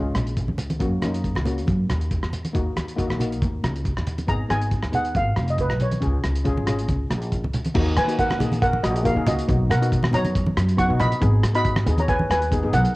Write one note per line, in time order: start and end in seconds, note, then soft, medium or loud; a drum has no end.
0.00 0.14 C#2 medium
0.00 0.63 G#3 medium
0.00 0.63 C#4 medium
0.00 0.64 F4 medium
0.15 0.46 A#1 medium
0.15 cross-stick medium
0.15 closed hi-hat medium
0.15 low conga medium
0.27 closed hi-hat soft
0.37 kick medium
0.37 closed hi-hat medium
0.48 0.79 C#2 medium
0.48 high conga medium
0.58 closed hi-hat medium
0.58 low conga medium
0.70 closed hi-hat medium
0.70 high conga medium
0.80 1.01 F#2 medium
0.80 0.94 A#3 medium
0.80 0.94 C#4 medium
0.80 0.95 F#4 medium
0.80 kick loud
0.80 closed hi-hat soft
1.02 1.33 F#2 medium
1.02 1.29 A#3 medium
1.02 1.29 C#4 medium
1.02 1.30 D#4 medium
1.02 cross-stick medium
1.02 closed hi-hat medium
1.02 high conga medium
1.14 closed hi-hat medium
1.24 kick medium
1.24 closed hi-hat soft
1.35 1.68 C#2 medium
1.35 cross-stick medium
1.35 high conga medium
1.45 1.98 A#3 medium
1.45 1.99 C#4 medium
1.45 1.99 F#4 medium
1.45 closed hi-hat medium
1.45 low conga medium
1.58 closed hi-hat medium
1.67 1.88 F#2 medium
1.67 kick medium
1.67 closed hi-hat soft
1.67 high conga medium
1.90 2.21 D#2 medium
1.90 cross-stick medium
1.90 closed hi-hat medium
1.90 low conga medium
2.01 closed hi-hat soft
2.11 kick medium
2.11 closed hi-hat medium
2.23 2.52 E2 medium
2.23 cross-stick medium
2.33 closed hi-hat medium
2.33 low conga medium
2.45 closed hi-hat medium
2.45 high conga medium
2.53 2.75 D#2 medium
2.53 2.80 A#3 medium
2.53 2.81 D#4 medium
2.53 2.81 F#4 medium
2.53 kick medium
2.53 closed hi-hat medium
2.76 3.07 D#2 medium
2.76 cross-stick medium
2.76 closed hi-hat medium
2.76 high conga soft
2.88 closed hi-hat medium
2.96 3.11 A#3 medium
2.96 3.11 D#4 medium
2.96 3.12 F#4 medium
2.96 kick medium
2.96 closed hi-hat medium
3.10 3.42 A#1 medium
3.10 cross-stick medium
3.10 high conga medium
3.19 3.72 A#3 medium
3.19 3.72 D#4 medium
3.19 3.72 F#4 medium
3.19 closed hi-hat medium
3.19 low conga medium
3.32 closed hi-hat medium
3.42 3.62 D#2 medium
3.42 kick loud
3.42 closed hi-hat medium
3.42 high conga medium
3.64 3.94 C#2 medium
3.64 cross-stick medium
3.64 closed hi-hat medium
3.64 low conga medium
3.76 closed hi-hat soft
3.85 kick medium
3.85 closed hi-hat medium
3.97 4.26 D#2 medium
3.97 cross-stick medium
4.07 closed hi-hat medium
4.07 low conga medium
4.18 closed hi-hat medium
4.18 high conga medium
4.27 4.48 G#1 medium
4.27 4.41 B3 medium
4.27 4.42 D#4 medium
4.27 4.42 G#4 medium
4.27 4.38 A#5 loud
4.27 kick loud
4.27 closed hi-hat medium
4.49 4.81 G#1 medium
4.49 4.76 B3 medium
4.49 4.76 D#4 medium
4.49 4.76 G#4 medium
4.49 4.91 G#5 medium
4.49 cross-stick medium
4.49 closed hi-hat medium
4.49 high conga soft
4.62 closed hi-hat medium
4.71 kick medium
4.71 closed hi-hat soft
4.83 5.16 D#2 medium
4.83 cross-stick medium
4.92 5.45 B3 medium
4.92 5.46 D#4 medium
4.92 5.46 G#4 medium
4.92 5.14 F#5 medium
4.92 closed hi-hat medium
4.92 low conga medium
5.05 closed hi-hat soft
5.15 5.35 G#1 medium
5.15 5.50 F5 medium
5.15 kick loud
5.15 closed hi-hat medium
5.15 high conga medium
5.36 5.68 F1 medium
5.36 cross-stick medium
5.36 closed hi-hat medium
5.36 low conga medium
5.48 5.59 D#5 medium
5.48 closed hi-hat soft
5.58 5.82 B4 medium
5.58 kick medium
5.58 closed hi-hat medium
5.70 5.99 B1 medium
5.70 cross-stick medium
5.80 6.64 C#5 medium
5.80 closed hi-hat medium
5.80 low conga medium
5.91 closed hi-hat medium
5.91 high conga medium
6.00 6.22 C#2 medium
6.00 6.27 C#4 medium
6.00 6.28 F4 medium
6.00 6.28 G#4 medium
6.00 kick medium
6.00 closed hi-hat medium
6.23 6.54 C#2 medium
6.23 cross-stick medium
6.23 closed hi-hat medium
6.35 closed hi-hat medium
6.44 6.58 C#4 medium
6.44 6.58 F4 medium
6.44 6.59 G#4 medium
6.44 kick medium
6.44 closed hi-hat medium
6.44 low conga medium
6.57 6.89 G#1 medium
6.57 high conga medium
6.66 7.19 C#4 medium
6.66 7.19 F4 medium
6.66 7.19 G#4 medium
6.66 cross-stick medium
6.66 closed hi-hat medium
6.66 low conga medium
6.78 closed hi-hat medium
6.88 7.09 C#2 medium
6.88 kick medium
6.88 closed hi-hat medium
6.88 high conga medium
7.10 7.41 A#1 medium
7.10 cross-stick medium
7.10 closed hi-hat medium
7.10 low conga medium
7.22 closed hi-hat soft
7.32 kick medium
7.32 closed hi-hat medium
7.43 7.73 C#2 medium
7.43 high conga medium
7.53 closed hi-hat medium
7.53 low conga medium
7.64 closed hi-hat medium
7.64 high conga medium
7.74 7.95 D#2 loud
7.74 7.94 A#3 medium
7.74 7.95 D#4 medium
7.74 7.95 F#4 medium
7.74 kick loud
7.74 crash medium
7.96 8.37 D#3 medium
7.96 8.18 B4 medium
7.96 8.19 G#5 medium
7.96 cross-stick medium
7.96 closed hi-hat medium
8.07 8.27 A#3 medium
8.07 8.27 D#4 medium
8.07 8.28 F#4 medium
8.07 closed hi-hat medium
8.19 8.60 A#4 medium
8.19 8.61 F#5 medium
8.19 kick medium
8.19 closed hi-hat medium
8.30 cross-stick medium
8.30 high conga medium
8.39 8.80 A#1 medium
8.39 8.79 A#3 medium
8.39 8.79 D#4 medium
8.39 8.80 G#4 medium
8.39 closed hi-hat medium
8.39 low conga medium
8.52 closed hi-hat medium
8.52 high conga medium
8.62 8.83 A#4 medium
8.62 8.84 F#5 medium
8.62 kick loud
8.62 closed hi-hat medium
8.73 high conga medium
8.83 9.14 A#1 medium
8.83 9.04 F#4 medium
8.83 9.06 D#5 medium
8.83 cross-stick medium
8.83 closed hi-hat medium
8.96 closed hi-hat medium
9.03 9.11 A#3 medium
9.03 9.12 D#4 medium
9.03 9.12 F#4 medium
9.03 9.25 A#4 medium
9.03 9.25 F5 medium
9.03 kick medium
9.03 closed hi-hat medium
9.15 9.26 D#3 medium
9.15 9.35 A#3 medium
9.15 9.36 D#4 medium
9.15 9.36 G#4 medium
9.26 9.37 C#2 loud
9.26 9.68 F#4 medium
9.26 9.72 D#5 medium
9.26 closed hi-hat medium
9.26 low conga medium
9.39 closed hi-hat medium
9.48 9.69 B1 loud
9.48 9.68 B3 medium
9.48 9.68 D#4 medium
9.48 9.68 F#4 medium
9.48 kick loud
9.48 closed hi-hat medium
9.70 10.10 B2 medium
9.70 10.11 A#4 medium
9.70 10.10 F#5 medium
9.70 cross-stick medium
9.70 closed hi-hat medium
9.81 10.01 B3 medium
9.81 10.01 D#4 medium
9.81 10.01 F#4 medium
9.81 closed hi-hat medium
9.92 kick medium
9.92 closed hi-hat medium
10.03 cross-stick medium
10.03 high conga medium
10.11 10.53 F#2 medium
10.11 10.51 B3 medium
10.11 10.52 D#4 medium
10.11 10.52 F#4 medium
10.11 10.75 C#5 medium
10.11 10.80 A#5 loud
10.11 closed hi-hat medium
10.11 low conga medium
10.25 closed hi-hat medium
10.25 high conga medium
10.35 kick loud
10.35 closed hi-hat medium
10.46 high conga medium
10.57 10.87 F#2 medium
10.57 cross-stick medium
10.57 closed hi-hat medium
10.69 closed hi-hat medium
10.77 10.84 B3 medium
10.77 10.85 D#4 medium
10.77 10.85 F#4 medium
10.77 10.99 F#5 medium
10.77 11.00 C#6 loud
10.77 kick medium
10.77 closed hi-hat medium
10.89 10.99 B2 medium
10.89 11.08 B3 medium
10.89 11.09 D#4 medium
10.89 11.09 F#4 medium
11.00 11.11 A#1 loud
11.00 11.51 D#5 medium
11.00 11.54 B5 loud
11.00 closed hi-hat medium
11.00 low conga medium
11.12 closed hi-hat medium
11.21 11.42 G#1 loud
11.21 11.41 B3 medium
11.21 11.41 D#4 medium
11.21 11.41 G#4 medium
11.21 kick loud
11.21 closed hi-hat medium
11.43 11.83 G#2 medium
11.43 cross-stick medium
11.43 closed hi-hat medium
11.54 11.74 B3 medium
11.54 11.74 D#4 medium
11.54 11.74 F#4 medium
11.54 11.95 D#5 medium
11.54 11.95 B5 loud
11.54 closed hi-hat medium
11.65 kick medium
11.65 closed hi-hat medium
11.76 cross-stick medium
11.76 high conga medium
11.86 12.26 D#2 medium
11.86 12.25 B3 medium
11.86 12.26 D#4 medium
11.86 12.26 G#4 medium
11.86 closed hi-hat medium
11.86 low conga medium
11.98 12.08 C#5 medium
11.98 12.09 A#5 medium
11.98 closed hi-hat medium
11.98 high conga medium
12.08 12.29 B4 medium
12.08 12.30 G#5 loud
12.08 kick loud
12.08 closed hi-hat medium
12.19 high conga medium
12.30 12.60 D#2 medium
12.30 12.71 B4 medium
12.30 12.71 G#5 medium
12.30 cross-stick medium
12.30 closed hi-hat medium
12.42 closed hi-hat medium
12.51 12.58 B3 medium
12.51 12.59 D#4 medium
12.51 12.59 G#4 medium
12.51 kick medium
12.51 closed hi-hat medium
12.63 12.72 G#2 medium
12.63 12.82 B3 medium
12.63 12.83 D#4 medium
12.63 12.83 G#4 medium
12.73 12.84 B1 loud
12.73 12.94 A#4 medium
12.73 12.96 F#5 medium
12.73 closed hi-hat medium
12.73 low conga medium
12.85 closed hi-hat medium